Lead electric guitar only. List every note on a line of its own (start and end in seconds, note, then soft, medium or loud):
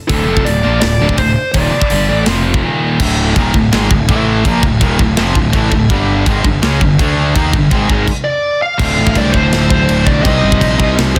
0.09 0.47 A4 medium
0.45 0.79 D5 loud
0.80 1.15 D5 loud
1.18 1.52 C5 medium
1.52 2.22 D5 medium
8.24 8.62 D5 medium
8.62 9.17 F5 medium
9.17 9.36 D5 medium
9.32 9.69 C5 medium
9.70 10.08 C5 medium
10.06 10.22 D5 medium
10.23 10.92 D#5 medium
11.16 11.19 C5 medium